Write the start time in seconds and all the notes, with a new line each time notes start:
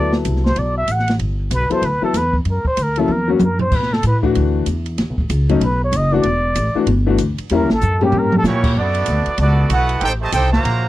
Already playing: D2 F#3 B3 E4 A4 D5
0.12 snare
0.25 C2, hi-hat pedal, ride
0.36 snare
0.46 C5, snare
0.56 B1 D5, ride
0.78 E5
0.88 A1 F#5, hi-hat pedal, ride
0.99 snare
1.08 snare, ride
1.19 G1, ride
1.51 B1 B4, hi-hat pedal, ride
1.70 F#3 B3 E4 A4 C5, muted upright bass stroke, ride
1.82 D2 B4, ride
2.02 F#3 B3 E4 A4, muted upright bass stroke
2.13 E2 B4, snare, hi-hat pedal, ride
2.33 kick
2.45 F#2, ride
2.51 A#4
2.65 C5, muted upright bass stroke, kick
2.77 D2, hi-hat pedal, ride
2.82 A#4
2.96 F#3 A#3 C#4 E4 A4, ride
3.08 E2, mid tom
3.12 A#4
3.28 F#3 A#3 C#4 F#4
3.39 F#2, hi-hat pedal, mid tom
3.44 A#4
3.59 C5, floor tom
3.71 B2, kick, crash
3.76 B4
3.83 snare
3.93 A4, snare
4.03 A2 B4, hi-hat pedal, ride
4.23 E3 A3 D4 F#4, kick
4.35 D2, ride
4.66 E2, hi-hat pedal, ride
4.86 ride
4.98 D#2, snare, ride
5.09 B1
5.18 A1, kick
5.30 C#2, hi-hat pedal, ride
5.49 F#3 A3 C#4 D#4, ride
5.61 B1, ride
5.65 B4
5.84 C#5
5.92 F#1, hi-hat pedal, ride
5.97 D#5
6.12 E3 A3 D4 F#4 D5
6.23 E1, ride
6.55 A1, hi-hat pedal, ride
6.74 E3 A3 D4 F#4, muted upright bass stroke
6.86 G1, ride
7.06 E3 A3 D4 F#4
7.18 D2, hi-hat pedal, ride
7.38 muted upright bass stroke, ride
7.49 E2 G3 A#3 C#4 E4, ride
7.55 A#4
7.61 C#2
7.70 A1 A4, snare
7.81 F#2, floor tom, hi-hat pedal
8.01 G3 A#3 C#4 G4, floor tom
8.12 G2, floor tom
8.18 A#4
8.32 mid tom
8.38 A4
8.44 A#2 E3 G3 A#3 C#4 E4 G4 C#5, snare, hi-hat pedal
8.64 kick, crash
8.75 F#2 A3 B3 D4
8.79 F#4 A4 D5
8.94 ride
9.06 D2, hi-hat pedal, ride
9.26 muted upright bass stroke, ride
9.38 C#2 A3 B3 D4 F#4 A4 D5, ride
9.42 B3
9.69 B1 A3 B3 E4 F#4 F#5, hi-hat pedal, ride
9.73 A4 B4
9.89 ride
10.00 A1 C4 D#4 G4 A4 C5 G5, ride
10.21 C3 D#3 A3 G4 C5 D#5 A5
10.32 C2 C4 D#4 G4 A4 C5 G5, hi-hat pedal, ride
10.51 C3 F#3 A#3 F#4 C5 F5 A#5, snare
10.64 A#1, ride